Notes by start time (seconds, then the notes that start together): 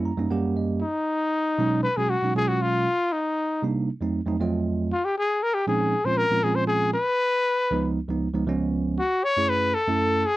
Already playing: F#2 G3 A#3 C#4 E4
0.05 A#5
0.17 F#2 G3 A#3 C#4 D#4
0.30 F#2 G3 A#3 C#4 G4 F#5
0.57 D#5
0.81 D#4
1.58 B2 F#3 G#3 C#4 D#4
1.83 B4
1.97 B2 F#3 G#3 C#4 F#4 G#4
2.10 F#4
2.22 B2 F#3 G#3 C#4 D#4
2.35 B2 F#3 G#3 C#4 F4 G#4
2.48 F#4
2.62 F4
3.12 D#4
3.62 C3 G3 A#3 D4 D#4
4.01 F2 F#3 A3 C4 D#4
4.26 F2 F#3 A3 C4 D#4
4.40 F2 F#3 A3 C4 F4 D#5
4.93 F4
5.05 G4
5.18 G#4
5.43 A#4
5.54 G4
5.67 A#2 F3 G#3 C4 C#4 D#4 G#4
6.05 A#2 F3 G#3 C4 C#4 F4 C5
6.17 A#4
6.31 A#2 F3 G#3 C4 C#4 F4
6.43 A#2 F3 G#3 C4 C#4 F4 G#4
6.55 C5
6.67 G#4
6.94 B4
7.71 C#2 F3 G#3 B3 D#4
8.08 C#2 F3 G#3 B3 D#4
8.33 C#2 F3 G#3 B3 D#4
8.47 C#2 F3 G#3 B3 C#4
8.99 F#4
9.24 C#5
9.37 F#2 A3 C#4 E4 G#4
9.49 B4
9.74 A4
9.88 F#2 A3 C#4 E4 A4
10.26 G#4